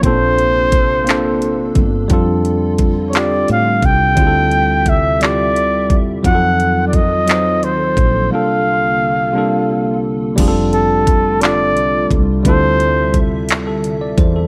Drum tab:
CC |------|------|------|------|
HH |xxxxxx|xxxxxx|xxxxxx|xxxxxx|
CP |---x--|---x--|---x--|---x--|
BD |o-o--o|o-o--o|o-o--o|o-o--o|

CC |------|x-----|------|
HH |------|xxxxxx|xxxxxx|
CP |------|---x--|---x--|
BD |------|o-o--o|o-o--o|